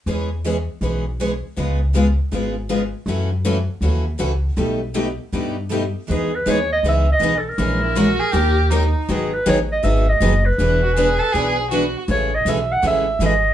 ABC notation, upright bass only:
X:1
M:4/4
L:1/8
Q:"Swing" 1/4=160
K:E
V:1 name="Upright bass" clef=bass
E,,4 B,,,4 | C,,4 G,,,4 | F,,4 D,,2 C,,2 | B,,,4 =G,,4 |
E,,2 D,,2 C,,2 B,,,2 | ^A,,,4 D,,4 | G,,,2 A,,,2 G,,,2 F,,,2 | E,,,4 B,,,4 |
A,,,2 B,,,2 A,,,2 G,,,2 |]